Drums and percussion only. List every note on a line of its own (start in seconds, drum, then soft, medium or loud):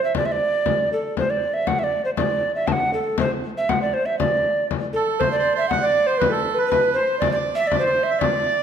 0.15 frame drum medium
0.66 frame drum medium
1.17 frame drum medium
1.43 frame drum soft
1.67 frame drum medium
2.17 frame drum medium
2.43 frame drum soft
2.67 frame drum medium
3.18 frame drum medium
3.44 frame drum soft
3.69 frame drum medium
4.20 frame drum medium
4.71 frame drum medium
4.96 frame drum soft
5.21 frame drum medium
5.46 frame drum soft
5.71 frame drum medium
6.21 frame drum medium
6.47 frame drum soft
6.72 frame drum medium
7.22 frame drum medium
7.47 frame drum soft
7.72 frame drum medium
8.21 frame drum medium